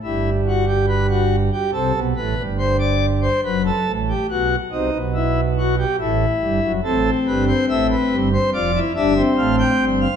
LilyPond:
<<
  \new Staff \with { instrumentName = "Pipe organ" } { \time 4/4 \key a \minor \tempo 4 = 71 << { r1 | r1 | a'8 b'16 c''16 e''16 b'8 c''16 d''8 e''8 f''16 g''8 f''16 | } \\ { e'8 fis'16 g'16 b'16 fis'8 g'16 a'8 b'8 c''16 d''8 c''16 | b'16 a'8 g'16 fis'8 dis'8 e'8 fis'16 g'16 e'4 | c'2 f'16 e'16 d'16 c'4~ c'16 | } >> }
  \new Staff \with { instrumentName = "Pipe organ" } { \clef bass \time 4/4 \key a \minor <g,, g,>2 <c, c>16 <b,, b,>16 <a,, a,>16 <g,, g,>4~ <g,, g,>16 | <fis,, fis,>8 <a,, a,>8 <b,, b,>8 <c, c>16 <b,, b,>4~ <b,, b,>16 <a,, a,>8 <g,, g,>16 <fis,, fis,>16 | <a,, a,>8 <g,, g,>8 <a,, a,>8 <g,, g,>8 <f,, f,>8 <g,, g,>8 <a,, a,>8 <g,, g,>8 | }
>>